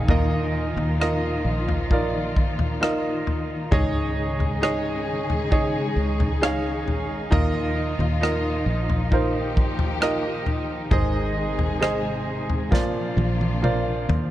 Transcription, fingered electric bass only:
0.08 0.73 D#2 medium
0.76 1.41 D#2 medium
1.45 3.68 A#1 medium
3.72 5.93 C#2 medium
5.96 6.86 C#2 medium
6.86 7.28 A#1 medium
7.32 7.96 D#2 medium
7.99 8.63 D#2 medium
8.66 10.87 A#1 medium
10.91 12.72 G#1 medium
12.72 13.15 A#1 medium
13.17 14.05 A#1 medium
14.09 14.31 D#2 medium

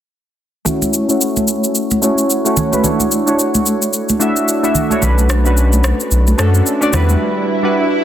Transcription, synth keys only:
0.65 0.99 A3 medium
0.65 0.99 C#4 medium
0.65 1.00 E4 medium
0.65 1.00 F#4 medium
0.65 1.00 C#5 medium
1.08 1.84 A3 medium
1.08 1.85 C#4 medium
1.08 1.85 E4 medium
1.08 1.85 F#4 medium
1.08 1.85 C#5 medium
2.02 2.36 A3 medium
2.02 2.36 C#4 medium
2.02 2.36 E4 medium
2.02 2.37 F#4 medium
2.02 2.37 C#5 medium
2.45 2.66 A3 medium
2.45 2.66 C#4 medium
2.45 2.67 E4 medium
2.45 2.67 F#4 medium
2.45 2.67 C#5 medium
2.72 2.81 A3 medium
2.72 2.82 C#4 medium
2.72 2.82 E4 medium
2.72 2.82 F#4 medium
2.72 2.83 B4 medium
2.83 3.17 A3 medium
2.83 3.18 D4 medium
2.83 3.18 E4 medium
2.83 3.18 F#4 medium
2.83 3.18 C#5 medium
3.26 4.02 A3 medium
3.26 4.03 D4 medium
3.26 4.03 E4 medium
3.26 4.03 F#4 medium
3.26 4.04 C#5 medium
4.19 4.54 A3 medium
4.19 4.54 D4 medium
4.19 4.54 E4 medium
4.19 4.55 F#4 medium
4.19 4.55 E5 medium
4.63 4.84 A3 medium
4.63 4.85 D4 medium
4.63 4.85 E4 medium
4.63 4.85 F#4 medium
4.63 4.85 E5 medium
4.90 5.00 A3 medium
4.90 5.00 D4 medium
4.90 5.00 E4 medium
4.90 5.01 F#4 medium
4.90 5.01 C#5 medium
5.01 5.36 A3 medium
5.01 5.36 C#4 medium
5.01 5.36 D4 medium
5.01 5.36 F#4 medium
5.01 5.37 B4 medium
5.45 6.21 A3 medium
5.45 6.21 C#4 medium
5.45 6.21 D4 medium
5.45 6.21 F#4 medium
5.45 6.22 B4 medium
6.38 6.72 A3 medium
6.38 6.72 C#4 medium
6.38 6.72 D4 medium
6.38 6.73 F#4 medium
6.38 6.73 A4 medium
6.81 6.93 A3 medium
6.81 6.93 C#4 medium
6.81 6.92 D4 medium
6.81 6.93 F#4 medium
6.81 6.94 D5 medium
6.92 7.47 G3 medium
6.92 7.48 D4 medium
6.92 7.48 E4 medium
6.92 7.48 F#4 medium
6.92 7.49 B4 medium
7.63 8.04 G3 medium
7.63 8.04 D4 medium
7.63 8.04 E4 medium
7.63 8.04 F#4 medium
7.63 8.04 B4 medium

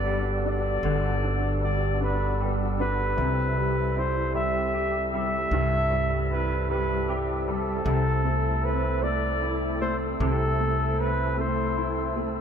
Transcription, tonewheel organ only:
0.00 7.82 G3 medium
0.00 3.13 B3 medium
0.00 3.13 D4 medium
0.00 3.14 F#4 medium
0.00 7.82 A4 medium
3.16 12.41 C4 medium
3.16 7.81 E4 medium
7.85 12.41 E4 medium
7.85 12.41 A4 medium

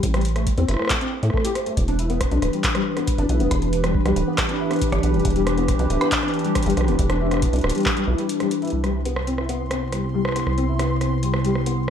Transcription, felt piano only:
0.14 0.18 G3 loud
0.36 0.43 A3 medium
0.58 0.62 C4 loud
0.69 0.79 E4 medium
0.79 0.89 A3 medium
1.01 1.08 C4 medium
1.23 1.30 A3 medium
1.34 1.40 A3 medium
1.45 1.49 G4 loud
1.56 1.66 C5 medium
1.66 1.73 A3 medium
1.88 1.92 D4 loud
1.99 2.09 E4 medium
2.10 2.20 B3 medium
2.32 2.38 D4 medium
2.53 2.63 G3 medium
2.75 2.79 G3 loud
2.97 3.03 B3 medium
3.18 3.22 D4 loud
3.29 3.39 E4 medium
3.40 3.50 B3 medium
3.62 3.69 D4 medium
3.84 3.94 G3 medium
4.06 4.09 G3 loud
4.27 4.34 B3 medium
4.49 4.53 D4 loud
4.60 4.70 E4 medium
4.71 4.81 B3 medium
4.92 4.99 D4 medium
5.14 5.24 G3 medium
5.36 5.40 G3 loud
5.58 5.64 B3 medium
5.79 5.83 D4 loud
5.90 6.00 E4 medium
6.01 6.11 B3 medium
6.23 6.29 D4 medium
6.44 6.55 G3 medium
6.66 6.70 G3 loud
6.88 6.95 B3 medium
7.10 7.14 D4 loud
7.21 7.31 E4 medium
7.32 7.42 B3 medium
7.53 7.60 D4 medium
7.75 7.85 G3 medium
7.97 8.01 G3 loud
8.08 8.14 E4 medium
8.19 8.23 G3 medium
8.40 8.44 G3 medium
8.62 8.69 E4 medium
8.84 8.88 G3 medium
9.05 9.12 B3 medium
9.27 9.31 C4 medium
9.38 9.48 E4 medium
9.49 9.59 B3 medium
9.71 9.77 C4 medium
9.92 10.02 G3 medium
10.14 10.18 G3 medium
10.36 10.43 B3 medium
10.58 10.62 C4 medium
10.69 10.79 E4 medium
10.79 10.89 B3 medium
11.01 11.08 C4 medium
11.23 11.33 G3 medium
11.45 11.49 G3 medium
11.66 11.73 B3 medium

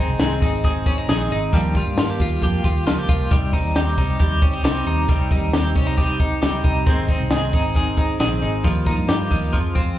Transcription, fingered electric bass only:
0.08 0.18 C2 medium
0.19 0.38 C2 medium
0.42 1.05 G#1 medium
1.08 1.27 A#1 loud
1.31 1.50 G#1 medium
1.53 1.81 D#2 loud
1.86 1.95 G2 loud
1.98 2.16 G2 medium
2.20 2.39 D#2 medium
2.42 2.61 F2 medium
2.64 2.83 D#2 loud
2.86 3.05 C#2 medium
3.09 3.28 C2 medium
3.31 3.59 C2 loud
3.64 3.74 D#2 medium
3.76 3.94 D#2 medium
3.98 4.17 C2 medium
4.20 4.42 D#2 medium
4.42 4.61 C#2 medium
4.63 4.83 C2 loud
4.86 5.05 D#2 loud
5.09 5.37 C2 loud
5.42 5.51 D#2 medium
5.53 5.72 D#2 loud
5.76 6.39 C2 medium
6.43 6.61 C#2 medium
6.65 6.83 C2 loud
6.87 7.15 G#1 loud
7.20 7.30 C2 medium
7.31 7.50 C2 medium
7.53 8.16 G#1 medium
8.20 8.39 A#1 loud
8.42 8.61 G#1 medium
8.64 8.93 D#2 loud
8.98 9.07 G2 medium
9.09 9.28 G2 loud
9.31 9.50 D#2 medium
9.54 9.92 F2 loud

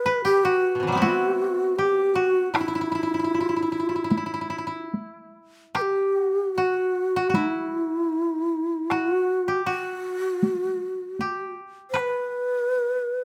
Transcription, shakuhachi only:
0.00 0.22 B4 medium
0.25 0.45 G4 medium
0.44 1.00 F#4 medium
1.01 1.78 F#4 medium
1.76 2.16 G4 medium
2.14 2.53 F#4 medium
2.54 3.37 E4 medium
3.37 3.59 F4 medium
3.59 3.84 E4 medium
3.84 4.06 F4 medium
4.06 4.88 E4 medium
5.78 6.57 G4 medium
5.78 5.83 B4 medium
6.56 7.37 F#4 medium
7.36 7.50 D#4 medium
7.50 8.92 E4 medium
8.92 9.15 E4 medium
9.15 9.67 F#4 medium
9.67 11.53 F#4 medium
11.90 12.01 C5 medium
12.00 13.24 B4 medium

